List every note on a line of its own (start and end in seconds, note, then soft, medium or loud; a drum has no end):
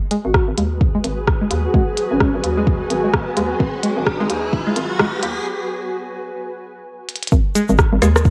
0.00 5.46 F#4 medium
0.00 5.46 G#4 medium
0.00 5.46 B4 medium
0.00 riser medium
0.11 0.15 G#3 loud
0.11 closed hi-hat medium
0.23 0.39 G#1 medium
0.23 0.31 F#4 medium
0.23 5.46 G#5 medium
0.34 0.43 F#4 medium
0.34 kick loud
0.34 cross-stick medium
0.48 0.54 G#1 medium
0.58 0.99 D#2 medium
0.58 0.62 G#3 medium
0.58 closed hi-hat medium
0.81 kick loud
0.95 0.98 G#3 loud
1.04 1.45 G#1 medium
1.04 closed hi-hat medium
1.27 kick loud
1.27 cross-stick medium
1.41 1.44 G#3 medium
1.51 1.67 D#2 medium
1.51 closed hi-hat medium
1.65 1.71 F#4 medium
1.74 1.83 G#1 medium
1.74 1.78 G#3 loud
1.74 1.83 F#4 medium
1.74 kick loud
1.97 closed hi-hat medium
2.11 2.25 G#1 medium
2.11 2.17 C#4 medium
2.20 2.25 G#3 medium
2.20 2.29 C#4 medium
2.20 kick loud
2.20 cross-stick medium
2.34 2.40 G#1 medium
2.44 2.85 D#2 medium
2.44 closed hi-hat medium
2.57 2.60 G#3 loud
2.67 kick loud
2.90 3.32 G#1 medium
2.90 closed hi-hat medium
3.04 3.07 G#3 medium
3.13 kick loud
3.13 cross-stick medium
3.37 3.54 D#2 medium
3.37 3.41 G#3 loud
3.37 closed hi-hat medium
3.60 3.69 G#1 loud
3.60 kick loud
3.83 3.88 G#3 medium
3.83 closed hi-hat loud
3.97 4.11 G#1 medium
4.07 kick loud
4.07 cross-stick medium
4.20 4.26 G#1 loud
4.20 4.23 G#3 loud
4.30 4.71 D#2 medium
4.30 closed hi-hat loud
4.53 kick loud
4.67 4.70 G#3 medium
4.76 5.18 G#1 medium
4.76 closed hi-hat medium
4.99 5.04 G#3 loud
4.99 kick loud
4.99 cross-stick loud
5.23 5.40 D#2 medium
5.23 closed hi-hat medium
7.09 closed hi-hat medium
7.16 closed hi-hat medium
7.23 closed hi-hat medium
7.27 closed hi-hat medium
7.32 7.41 G#1 loud
7.32 8.30 A#4 medium
7.32 kick loud
7.32 shaker soft
7.55 7.60 G#3 loud
7.55 closed hi-hat medium
7.55 shaker medium
7.68 7.83 G#1 medium
7.68 low conga medium
7.68 shaker medium
7.78 kick loud
7.78 cross-stick loud
7.78 shaker soft
7.92 7.99 G#1 medium
7.92 low conga loud
8.02 8.30 D#2 medium
8.02 8.06 G#3 medium
8.02 cross-stick medium
8.02 closed hi-hat medium
8.02 high woodblock medium
8.02 shaker medium
8.16 cross-stick medium
8.16 shaker medium
8.25 kick loud
8.25 shaker soft